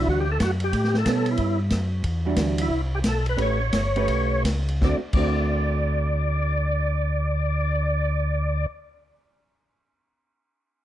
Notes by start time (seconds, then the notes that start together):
Already playing: E3 G3 D4 F#4
0.07 D2 F#4, kick
0.20 G4
0.32 A4
0.40 F#2 F#4, kick, snare, hi-hat pedal, ride
0.60 ride
0.64 G4
0.73 A2, kick, ride
0.84 snare
0.94 A4, snare
1.06 B2 G3 B3 C#4, kick, snare, hi-hat pedal, ride
1.26 ride
1.31 E4
1.37 G2, kick, ride
1.70 F#2, kick, snare, hi-hat pedal, ride
2.04 E2, kick, ride
2.25 E3 G3 D4 F#4
2.36 D2, kick, snare, hi-hat pedal, ride
2.58 E4, ride
2.70 C2, kick
2.95 G4
3.03 B1, kick, snare, hi-hat pedal, ride
3.09 A4
3.26 B4, ride
3.37 A1 A3 C#4 G4 B4, kick, ride
3.42 C#5
3.72 G1, kick, snare, hi-hat pedal, ride
3.96 A3 C#4 G4 B4, ride
4.08 B1, kick, ride
4.44 C#2, kick, snare, hi-hat pedal, ride
4.68 ride
4.81 D2 D3 A3 C4 F#4 D5, kick, snare
5.13 D2 D3 A3 C4 F#4 D5, kick, crash